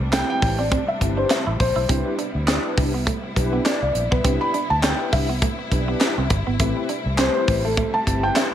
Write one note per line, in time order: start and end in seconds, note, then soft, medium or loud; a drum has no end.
0.00 0.21 C2 medium
0.00 6.56 C3 medium
0.00 6.56 G3 medium
0.00 1.85 A3 medium
0.00 1.87 D4 medium
0.12 0.25 A3 medium
0.12 0.56 C4 medium
0.12 0.56 E4 medium
0.12 0.56 G4 medium
0.12 0.56 B4 medium
0.12 0.28 G5 loud
0.12 snare loud
0.12 clap loud
0.12 closed hi-hat loud
0.30 0.60 G5 loud
0.42 0.76 A1 medium
0.42 muted clean electric guitar stroke medium
0.42 kick loud
0.42 open hi-hat medium
0.59 0.68 C4 medium
0.59 0.86 D5 medium
0.72 0.83 C4 medium
0.72 kick loud
0.72 closed hi-hat medium
0.88 1.19 E5 medium
0.88 muted clean electric guitar stroke soft
1.01 1.23 G1 loud
1.01 1.44 C4 medium
1.01 1.44 E4 medium
1.01 1.45 G4 medium
1.01 1.45 B4 medium
1.01 kick medium
1.01 closed hi-hat medium
1.17 1.27 D4 medium
1.17 1.31 C5 medium
1.30 1.61 E5 loud
1.30 snare loud
1.30 clap medium
1.30 closed hi-hat medium
1.47 1.57 A1 medium
1.47 1.56 E4 medium
1.60 1.72 A#1 medium
1.60 2.15 C5 medium
1.60 muted clean electric guitar stroke soft
1.60 kick loud
1.60 open hi-hat medium
1.76 1.86 B1 medium
1.76 1.85 E4 medium
1.89 2.02 C2 loud
1.89 6.56 B3 medium
1.89 2.01 C4 medium
1.89 2.17 D4 medium
1.89 8.54 E4 medium
1.89 2.17 E4 medium
1.89 2.17 G4 medium
1.89 2.18 B4 medium
1.89 kick loud
1.89 closed hi-hat medium
2.06 muted clean electric guitar stroke soft
2.19 2.31 D4 medium
2.19 closed hi-hat medium
2.35 2.57 D2 medium
2.47 2.60 C4 medium
2.47 2.91 D4 loud
2.47 2.91 E4 medium
2.47 2.92 G4 medium
2.47 2.92 B4 loud
2.47 snare loud
2.47 clap medium
2.47 closed hi-hat medium
2.77 3.11 C2 medium
2.77 muted clean electric guitar stroke soft
2.77 kick loud
2.77 open hi-hat medium
2.94 3.04 B3 medium
3.07 3.19 A3 loud
3.07 kick loud
3.07 closed hi-hat medium
3.24 muted clean electric guitar stroke soft
3.35 3.58 B1 loud
3.35 3.79 D4 medium
3.35 3.79 E4 medium
3.35 3.80 G4 medium
3.35 3.80 B4 loud
3.35 kick medium
3.35 closed hi-hat medium
3.53 3.62 B3 medium
3.65 3.77 C4 medium
3.65 3.81 D5 medium
3.65 snare loud
3.65 clap medium
3.65 closed hi-hat medium
3.82 3.92 C2 medium
3.82 4.10 D5 medium
3.82 muted clean electric guitar stroke soft
3.95 4.07 A#1 medium
3.95 closed hi-hat medium
4.11 4.21 B1 medium
4.11 4.21 B3 medium
4.11 4.42 B4 medium
4.11 kick loud
4.24 4.37 C2 medium
4.24 4.36 C4 medium
4.24 4.52 D4 medium
4.24 4.53 E4 medium
4.24 4.53 G4 medium
4.24 4.53 B4 medium
4.24 kick loud
4.24 closed hi-hat medium
4.41 4.71 B5 loud
4.41 muted clean electric guitar stroke soft
4.54 4.66 D4 medium
4.54 closed hi-hat medium
4.70 4.92 D2 loud
4.70 4.84 A5 loud
4.83 4.95 C4 medium
4.83 5.27 D4 medium
4.83 4.91 D#4 medium
4.83 5.27 G4 medium
4.83 5.27 B4 medium
4.83 5.14 G5 loud
4.83 snare loud
4.83 clap medium
4.83 closed hi-hat loud
4.90 5.30 E4 medium
5.13 5.47 C2 medium
5.13 5.68 E5 medium
5.13 muted clean electric guitar stroke soft
5.13 kick loud
5.13 open hi-hat medium
5.29 5.39 B3 medium
5.42 5.54 A3 medium
5.42 kick loud
5.42 closed hi-hat medium
5.59 muted clean electric guitar stroke soft
5.71 5.93 B1 medium
5.71 6.15 D4 medium
5.71 6.15 E4 medium
5.71 6.15 G4 medium
5.71 6.15 B4 medium
5.71 kick medium
5.71 closed hi-hat medium
5.88 5.98 B3 medium
6.00 snare loud
6.00 clap medium
6.00 closed hi-hat medium
6.18 6.27 C2 medium
6.18 6.27 C4 medium
6.30 6.42 G1 loud
6.30 muted clean electric guitar stroke soft
6.30 kick loud
6.30 closed hi-hat medium
6.47 6.56 G#1 medium
6.47 6.56 B3 medium
6.59 6.72 A1 loud
6.59 8.54 C3 medium
6.59 8.54 G3 medium
6.59 8.54 A3 medium
6.59 6.72 A3 medium
6.59 6.88 C4 loud
6.59 6.88 E4 medium
6.59 6.88 G4 medium
6.59 6.88 B4 loud
6.59 kick loud
6.59 closed hi-hat medium
6.77 muted clean electric guitar stroke soft
6.89 7.01 D4 medium
6.89 closed hi-hat medium
7.06 7.27 C2 loud
7.18 7.62 C4 medium
7.18 7.31 C4 medium
7.18 7.62 E4 medium
7.18 7.62 G4 medium
7.18 7.62 B4 medium
7.18 7.33 C5 medium
7.18 snare loud
7.18 clap loud
7.18 closed hi-hat loud
7.35 7.65 C5 loud
7.48 7.82 A1 medium
7.48 muted clean electric guitar stroke soft
7.48 kick loud
7.48 open hi-hat medium
7.65 7.74 A3 medium
7.65 7.95 A4 medium
7.77 7.90 A3 loud
7.77 kick loud
7.77 closed hi-hat medium
7.94 8.24 A5 loud
7.94 muted clean electric guitar stroke soft
8.06 8.29 G1 loud
8.06 8.50 C4 medium
8.06 8.50 E4 medium
8.06 8.50 G4 medium
8.06 8.51 B4 medium
8.06 kick medium
8.06 closed hi-hat medium
8.23 8.33 C4 medium
8.23 8.37 G5 loud
8.36 8.48 D4 medium
8.36 8.43 E5 medium
8.36 snare loud
8.36 clap medium
8.36 closed hi-hat medium